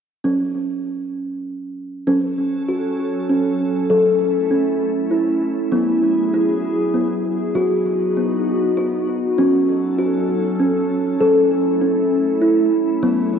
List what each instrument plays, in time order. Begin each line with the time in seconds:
0.24 kalimba F#3 C#4
2.06 ambient pad F#3 C#4 A4, kalimba F#3 C#4
2.68 kalimba F#4
3.29 kalimba C#4
3.90 kalimba F#3 A4, ambient pad A3 E4
4.51 kalimba C#4
5.11 kalimba E4
5.71 ambient pad F#3 G#4, kalimba F#3 B3
6.34 kalimba E4
6.94 kalimba B3
7.55 kalimba F#3 F#4, ambient pad B3 D#4 F#4
8.17 kalimba B3
8.77 kalimba F#4
9.38 kalimba F#3 C#4, ambient pad F#3 C#4 A4
9.99 kalimba F#4
10.60 kalimba C#4
11.19 kalimba F#3 A4, ambient pad A3 E4
11.82 kalimba C#4
12.42 kalimba E4
13.03 ambient pad F#3 G#4, kalimba F#3 B3